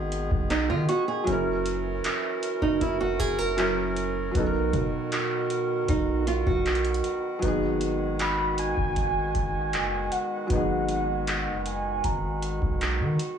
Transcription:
Already playing: 808-style bass G#1, woodwind section D#3 G#3 B3 G#4, felt piano F#3 B3 D#4 G#4, downlifter
0.12 closed hi-hat
0.31 808-style bass B1, kick
0.50 nylon-string guitar D#4, clap, closed hi-hat
0.70 808-style bass D#3, nylon-string guitar F4
0.89 nylon-string guitar F#4, celesta C#6, closed hi-hat
1.08 nylon-string guitar G#4
1.24 808-style bass F#1, woodwind section E3 C#4 F#4 A#4, felt piano F#3 C#4, kick, closed hi-hat
1.29 felt piano E4 A#4
1.66 closed hi-hat
2.04 clap, closed hi-hat
2.43 closed hi-hat
2.62 808-style bass F#1, nylon-string guitar D#4, kick
2.81 808-style bass F#1, nylon-string guitar E4, kick, closed hi-hat
3.01 nylon-string guitar F#4
3.20 808-style bass F#1, nylon-string guitar G#4, kick, closed hi-hat
3.39 nylon-string guitar A#4
3.57 felt piano F#3 C#4 E4, clap, closed hi-hat
3.61 felt piano A#4
3.97 closed hi-hat
4.31 808-style bass B1, felt piano F#3 B3, kick, closed hi-hat
4.36 woodwind section D#3 B3, felt piano D#4
4.40 felt piano A4
4.46 felt piano A#4
4.73 808-style bass B2, kick, closed hi-hat
5.12 clap, closed hi-hat
5.50 closed hi-hat
5.88 808-style bass B1, nylon-string guitar D#4, kick, closed hi-hat
6.27 nylon-string guitar F4, closed hi-hat
6.47 808-style bass B1, nylon-string guitar F#4, kick
6.66 clap, closed hi-hat
6.75 closed hi-hat
6.85 closed hi-hat
6.94 closed hi-hat
7.04 closed hi-hat
7.39 808-style bass G#1, felt piano F#3 B3, kick, closed hi-hat
7.43 woodwind section G#3, felt piano D#4
7.47 felt piano G#4
7.81 closed hi-hat
8.19 celesta G#5, soft synth lead B5, clap, closed hi-hat
8.43 celesta B5
8.58 soft synth lead G#5, closed hi-hat
8.77 808-style bass G#1, kick
8.96 808-style bass G#1, kick, closed hi-hat
9.35 808-style bass G#1, kick, closed hi-hat
9.73 808-style bass F#1, clap, closed hi-hat
10.12 soft synth lead F#5, closed hi-hat
10.47 808-style bass G#1, felt piano F#3 B3, kick, closed hi-hat
10.51 felt piano D#4, soft synth lead F#5
10.55 felt piano G#4
10.89 closed hi-hat
11.27 clap, closed hi-hat
11.47 808-style bass F#1
11.66 soft synth lead G#5, closed hi-hat
12.04 808-style bass G#1, celesta A#5, kick, closed hi-hat
12.42 closed hi-hat
12.62 808-style bass B1, kick
12.81 clap, closed hi-hat
13.00 808-style bass D#3
13.19 closed hi-hat

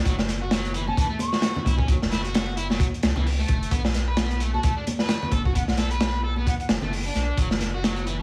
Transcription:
0.05 sub bass F#1, distorted electric guitar F#3, kick, closed hi-hat
0.19 snare
0.29 snare, closed hi-hat
0.41 distorted electric guitar F#4
0.51 distorted electric guitar F#3, snare, closed hi-hat
0.65 closed hi-hat
0.74 distorted electric guitar E3, closed hi-hat
0.87 distorted electric guitar C#4, flute A5, high conga
0.97 distorted electric guitar E3, flute A5, kick, closed hi-hat
1.10 distorted electric guitar A3
1.19 flute C#6, closed hi-hat, high conga
1.33 distorted electric guitar F#4, snare
1.42 snare, closed hi-hat
1.56 low conga
1.65 sub bass C#2, distorted electric guitar E4, kick, closed hi-hat, high conga
1.78 distorted electric guitar C#4, kick
1.88 distorted electric guitar F#3, kick, closed hi-hat
2.02 sub bass F#1, snare
2.11 distorted electric guitar E4, snare, closed hi-hat
2.24 distorted electric guitar F#4, closed hi-hat
2.34 snare, closed hi-hat
2.57 distorted electric guitar E4, closed hi-hat
2.70 distorted electric guitar F#3, snare, high conga
2.80 distorted electric guitar F#3, kick, closed hi-hat
2.94 closed hi-hat
3.03 sub bass C#2, snare, closed hi-hat
3.15 sub bass C#2, distorted electric guitar E3, low conga
3.27 open hi-hat
3.39 distorted electric guitar A3
3.48 sub bass F#1, kick, closed hi-hat
3.63 closed hi-hat
3.71 sub bass B1, distorted electric guitar B3, kick, closed hi-hat
3.85 snare
3.94 snare, closed hi-hat
4.08 distorted electric guitar B4
4.17 distorted electric guitar B3, snare, closed hi-hat
4.31 closed hi-hat
4.40 distorted electric guitar A3, closed hi-hat
4.54 distorted electric guitar F#4, flute A5, high conga
4.63 distorted electric guitar A3, flute A5, kick, closed hi-hat
4.77 distorted electric guitar D4
4.87 closed hi-hat, high conga
4.99 distorted electric guitar B4, snare
5.09 snare, closed hi-hat
5.23 low conga
5.32 sub bass F#1, distorted electric guitar A4, kick, closed hi-hat, high conga
5.45 distorted electric guitar F#4, kick
5.55 distorted electric guitar B3, flute F#5, kick, closed hi-hat
5.68 sub bass B1, flute F#5, snare
5.77 distorted electric guitar A4, snare, closed hi-hat
5.91 distorted electric guitar B4, closed hi-hat
6.00 snare, closed hi-hat
6.24 distorted electric guitar A4
6.36 distorted electric guitar B3, high conga
6.47 distorted electric guitar B3, flute F#5, kick, closed hi-hat
6.60 flute F#5, closed hi-hat
6.69 sub bass F#1, snare, closed hi-hat
6.82 sub bass F#1, distorted electric guitar A3, low conga
6.93 open hi-hat
7.06 distorted electric guitar D4
7.15 sub bass B1, snare, closed hi-hat
7.37 sub bass F#1, distorted electric guitar F#3, kick, closed hi-hat
7.51 snare
7.60 snare, closed hi-hat
7.74 distorted electric guitar F#4
7.84 distorted electric guitar F#3, snare, closed hi-hat
7.96 closed hi-hat
8.07 distorted electric guitar E3, closed hi-hat

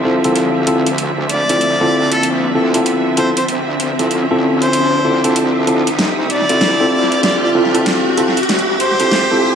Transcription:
Already playing: wobble bass C2, string section D3 F3 C4 E5, riser
0.05 tine electric piano C4 E4 F4 A4
0.24 tine electric piano C4 E4 F4 A4, closed hi-hat
0.36 closed hi-hat
0.56 wobble bass D2
0.67 tine electric piano C4 E4 F4 A4, closed hi-hat
0.86 closed hi-hat
0.98 wobble bass D2, closed hi-hat
1.29 harmonica D5, closed hi-hat
1.49 tine electric piano C4 E4 F4 A4, closed hi-hat
1.61 wobble bass D2, closed hi-hat
1.81 tine electric piano C4 E4 F4 A4
2.12 harmonica A4, closed hi-hat
2.23 wobble bass D2, closed hi-hat
2.55 tine electric piano C4 E4 F4 A4
2.74 tine electric piano C4 E4 F4 A4, closed hi-hat
2.86 closed hi-hat
3.17 tine electric piano C4 E4 F4 A4, harmonica C5, closed hi-hat
3.37 harmonica C5, closed hi-hat
3.48 wobble bass D2, closed hi-hat
3.80 closed hi-hat
3.99 tine electric piano C4 E4 F4 A4, closed hi-hat
4.11 wobble bass D2, closed hi-hat
4.31 wobble bass D2, tine electric piano C4 E4 F4 A4
4.62 harmonica C5, closed hi-hat
4.73 wobble bass D2, closed hi-hat
5.05 tine electric piano C4 E4 F4 A4
5.24 wobble bass D2, tine electric piano C4 E4 F4 A4, closed hi-hat
5.36 closed hi-hat
5.56 wobble bass D2
5.67 tine electric piano C4 E4 F4 A4, closed hi-hat
5.87 wobble bass C2, closed hi-hat
5.99 wobble bass D2, string section G4, snare, closed hi-hat
6.30 harmonica D5, closed hi-hat
6.49 tine electric piano C4 E4 F4 A4, closed hi-hat
6.61 wobble bass D2, snare, closed hi-hat
6.80 tine electric piano C4 E4 F4 A4
7.12 closed hi-hat
7.23 wobble bass D2, harmonica D5, snare, closed hi-hat
7.43 harmonica D5
7.55 tine electric piano C4 E4 F4 A4
7.75 tine electric piano C4 E4 F4 A4, closed hi-hat
7.86 snare, closed hi-hat
8.17 tine electric piano C4 E4 F4 A4, closed hi-hat
8.37 closed hi-hat
8.43 closed hi-hat
8.49 wobble bass D2, snare, closed hi-hat
8.59 closed hi-hat
8.80 harmonica C5, closed hi-hat
9.00 tine electric piano C4 E4 F4 A4, closed hi-hat
9.11 wobble bass D2, snare, closed hi-hat
9.31 tine electric piano C4 E4 F4 A4

